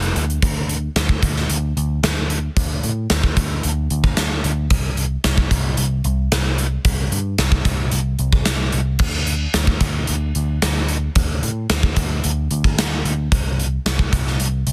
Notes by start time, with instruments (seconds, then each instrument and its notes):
Already playing: picked electric bass F1
0.02 closed hi-hat
0.15 picked electric bass D2, closed hi-hat
0.30 closed hi-hat
0.42 picked electric bass D2, kick, closed hi-hat
0.69 closed hi-hat
0.96 picked electric bass D2, snare, closed hi-hat
1.09 kick
1.22 picked electric bass D2, kick, closed hi-hat
1.36 snare
1.49 picked electric bass D2, closed hi-hat
1.77 picked electric bass D2, closed hi-hat
2.03 picked electric bass D2, snare, closed hi-hat
2.30 closed hi-hat
2.57 picked electric bass D2, kick, closed hi-hat
2.83 picked electric bass A2, closed hi-hat
3.10 picked electric bass D2, snare, closed hi-hat
3.24 kick
3.37 picked electric bass D2, kick, closed hi-hat
3.63 picked electric bass D2, closed hi-hat
3.90 picked electric bass D2, closed hi-hat
4.04 kick
4.17 picked electric bass D2, snare, closed hi-hat
4.44 picked electric bass D2, closed hi-hat
4.70 picked electric bass C2, kick, closed hi-hat
4.97 closed hi-hat
5.24 picked electric bass C2, snare, closed hi-hat
5.38 kick
5.51 picked electric bass C2, kick, closed hi-hat
5.77 picked electric bass C2, closed hi-hat
6.04 picked electric bass C2, closed hi-hat
6.32 picked electric bass C2, snare, closed hi-hat
6.58 closed hi-hat
6.85 picked electric bass C2, kick, closed hi-hat
7.12 picked electric bass G2, closed hi-hat
7.38 picked electric bass C2, snare, closed hi-hat
7.52 kick
7.65 picked electric bass C2, kick, closed hi-hat
7.91 picked electric bass C2, closed hi-hat
8.19 picked electric bass C2, closed hi-hat
8.32 kick
8.45 picked electric bass C2, snare, closed hi-hat
8.72 picked electric bass C2, closed hi-hat
8.99 picked electric bass D2, kick, crash
9.27 closed hi-hat
9.54 picked electric bass D2, snare, closed hi-hat
9.67 kick
9.80 picked electric bass D2, kick, closed hi-hat
10.07 picked electric bass D2, closed hi-hat
10.35 picked electric bass D2, closed hi-hat
10.62 picked electric bass D2, snare, closed hi-hat
10.88 closed hi-hat
11.15 picked electric bass D2, kick, closed hi-hat
11.43 picked electric bass A2, closed hi-hat
11.70 picked electric bass D2, snare, closed hi-hat
11.83 kick
11.96 picked electric bass D2, kick, closed hi-hat
12.24 picked electric bass D2, closed hi-hat
12.51 picked electric bass D2, closed hi-hat
12.64 kick
12.77 picked electric bass D2, snare, closed hi-hat
13.05 picked electric bass D2, closed hi-hat
13.32 picked electric bass C2, kick, closed hi-hat
13.60 closed hi-hat
13.86 picked electric bass C2, snare, closed hi-hat
13.99 kick
14.13 picked electric bass C2, kick, closed hi-hat
14.27 snare
14.40 picked electric bass C2, closed hi-hat
14.67 picked electric bass C2, closed hi-hat